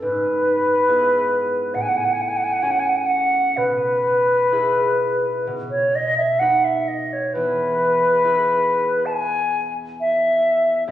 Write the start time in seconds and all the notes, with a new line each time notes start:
0.01 G#2 B4
0.88 B3 E4 G#4
1.74 A2 F#5
1.81 G#5
1.88 F#5
1.97 G#5
2.04 F#5
2.13 G#5
2.21 F#5
2.28 G#5
2.36 F#5
2.43 G#5
2.52 F#5
2.62 C#4 F#4 C#5 G#5
2.71 F#5
2.79 G#5
2.89 F#5
2.96 G#5
3.06 F#5
3.56 B2 B4
4.52 E4 G#4 B4
5.47 B2
5.70 C#5
5.95 D#5
6.17 E5
6.39 D#4 F#4 B4 F#5
6.64 E5
6.87 D#5
7.12 C#5
7.33 E2 B4
8.24 E4 G#4 B4
9.05 A5
9.11 G#5
10.00 E5
10.88 F#2 D#5